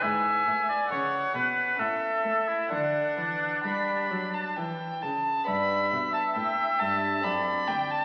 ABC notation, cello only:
X:1
M:3/4
L:1/8
Q:1/4=68
K:D
V:1 name="Cello" clef=bass
^G,, A,, C, B,, A,, A, | D, E, G, F, E, C, | [K:G] G,, B,, A,, G,, F,, D,, |]